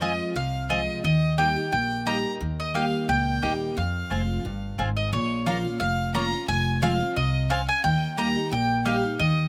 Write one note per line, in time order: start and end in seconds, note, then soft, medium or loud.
0.00 0.18 F2 medium
0.00 0.33 F2 medium
0.00 0.34 F3 medium
0.00 0.34 G#3 medium
0.00 0.11 C4 medium
0.00 0.35 C4 medium
0.00 0.11 F4 medium
0.00 0.35 F4 medium
0.00 0.11 C5 medium
0.00 0.33 D#5 medium
0.00 0.34 D#5 medium
0.00 0.11 G#5 medium
0.36 0.86 C2 medium
0.36 1.01 C3 medium
0.36 0.67 F5 medium
0.36 0.68 F5 medium
0.69 1.02 F3 medium
0.69 1.03 G#3 medium
0.69 0.79 C4 medium
0.69 1.03 C4 medium
0.69 0.80 F4 medium
0.69 1.03 F4 medium
0.69 0.80 C5 medium
0.69 1.03 D#5 loud
0.69 1.02 D#5 medium
0.69 0.80 G#5 loud
1.04 1.55 D#2 medium
1.04 1.69 D#3 medium
1.04 1.36 D#5 medium
1.04 1.36 D#5 loud
1.38 1.56 G3 medium
1.38 1.48 A#3 medium
1.38 1.56 A#3 medium
1.38 1.56 D#4 medium
1.38 1.48 G4 medium
1.38 1.55 G4 medium
1.38 1.48 D#5 medium
1.38 1.71 G5 loud
1.38 1.48 G5 medium
1.38 1.70 G5 medium
1.56 1.72 D#4 soft
1.56 1.72 G4 medium
1.72 2.23 A#1 medium
1.72 2.37 A#2 medium
1.72 2.04 G5 loud
1.72 2.04 G5 medium
2.06 2.39 G3 medium
2.06 2.16 A#3 medium
2.06 2.39 A#3 medium
2.06 2.39 D#4 medium
2.06 2.16 G4 medium
2.06 2.39 G4 medium
2.06 2.16 D#5 medium
2.06 2.17 G5 medium
2.06 2.31 A#5 loud
2.06 2.31 A#5 medium
2.40 2.91 D#2 medium
2.40 3.06 D#3 medium
2.60 2.76 D#5 medium
2.60 2.74 D#5 medium
2.74 3.07 G3 medium
2.74 2.84 A#3 medium
2.74 3.07 A#3 medium
2.74 3.07 D#4 medium
2.74 2.84 G4 medium
2.74 3.08 G4 medium
2.74 2.84 D#5 medium
2.74 3.09 F5 medium
2.74 3.07 F5 medium
2.74 2.85 G5 medium
3.09 3.38 C#2 medium
3.09 3.74 A#2 medium
3.09 3.73 G5 loud
3.09 3.73 G5 medium
3.42 3.72 D#2 medium
3.42 3.75 G3 medium
3.42 3.52 A#3 medium
3.42 3.75 A#3 medium
3.42 3.76 D#4 medium
3.42 3.52 G4 loud
3.42 3.76 G4 medium
3.42 3.52 D#5 loud
3.42 3.53 G5 loud
3.77 4.42 F2 medium
3.77 4.02 F2 medium
3.77 4.75 F5 medium
4.10 4.40 F1 medium
4.10 4.43 F3 medium
4.10 4.43 G#3 medium
4.10 4.20 C4 medium
4.10 4.44 C4 medium
4.10 4.20 F4 medium
4.10 4.44 F4 medium
4.10 4.21 C5 medium
4.10 4.21 G#5 medium
4.45 4.74 G1 medium
4.45 4.77 G2 medium
4.78 5.08 G#1 medium
4.78 5.11 G#2 medium
4.78 4.88 C4 medium
4.78 4.88 F4 medium
4.78 4.89 C5 medium
4.78 4.89 G#5 loud
4.97 5.11 D#5 medium
4.97 5.12 D#5 medium
5.13 5.63 A#1 medium
5.13 5.77 A#2 medium
5.13 5.45 C#5 medium
5.13 5.45 C#5 loud
5.46 5.64 F3 medium
5.46 5.56 A#3 medium
5.46 5.64 A#3 loud
5.46 5.65 C#4 medium
5.46 5.56 F4 medium
5.46 5.63 F4 loud
5.46 5.57 C#5 medium
5.46 5.78 F5 medium
5.46 5.57 A#5 loud
5.65 5.81 C#4 soft
5.65 5.80 F4 medium
5.80 6.31 F1 medium
5.80 6.45 F2 loud
5.80 6.12 F5 loud
5.80 6.12 F5 medium
6.14 6.32 F3 medium
6.14 6.24 A#3 medium
6.14 6.32 A#3 medium
6.14 6.32 C#4 medium
6.14 6.24 F4 medium
6.14 6.31 F4 loud
6.14 6.25 C#5 loud
6.14 6.46 A#5 medium
6.14 6.46 A#5 loud
6.14 6.25 A#5 medium
6.32 6.48 C#4 soft
6.32 6.48 F4 medium
6.48 6.99 F1 medium
6.48 7.13 F2 medium
6.48 6.80 G#5 medium
6.48 6.80 G#5 loud
6.82 7.00 F3 loud
6.82 7.00 G#3 medium
6.82 6.92 C4 medium
6.82 7.00 C4 medium
6.82 6.92 F4 medium
6.82 6.99 F4 loud
6.82 6.92 C5 loud
6.82 7.17 F5 loud
6.82 7.14 F5 medium
6.82 6.92 G#5 medium
7.00 7.16 C4 medium
7.00 7.15 F4 medium
7.15 7.67 C2 medium
7.15 7.49 C3 medium
7.15 7.47 D#5 medium
7.15 7.48 D#5 medium
7.50 7.60 C4 medium
7.50 7.82 C#4 medium
7.50 7.60 F4 medium
7.50 7.60 C5 loud
7.50 7.67 F5 loud
7.50 7.67 F5 medium
7.50 7.60 G#5 loud
7.68 7.83 G#5 medium
7.68 7.83 G#5 loud
7.84 8.35 D#2 medium
7.84 8.49 D#3 loud
7.84 8.15 G5 medium
7.84 8.15 G5 loud
8.17 8.35 G3 medium
8.17 8.27 A#3 medium
8.17 8.35 A#3 medium
8.17 8.36 D#4 loud
8.17 8.28 G4 medium
8.17 8.34 G4 loud
8.17 8.28 D#5 medium
8.17 8.28 G5 medium
8.17 8.49 A#5 medium
8.17 8.52 A#5 loud
8.36 8.52 D#4 medium
8.36 8.51 G4 medium
8.51 9.02 A#1 medium
8.51 9.16 A#2 medium
8.51 8.83 G5 medium
8.51 8.84 G5 loud
8.85 9.03 G3 medium
8.85 8.95 A#3 medium
8.85 9.03 A#3 medium
8.85 9.03 D#4 medium
8.85 8.95 G4 medium
8.85 9.02 G4 medium
8.85 8.95 D#5 medium
8.85 9.17 F5 medium
8.85 9.20 F5 loud
8.85 8.96 G5 loud
9.03 9.19 D#4 soft
9.03 9.19 G4 medium
9.19 9.45 D#2 medium
9.19 9.48 D#3 medium
9.19 9.48 D#5 medium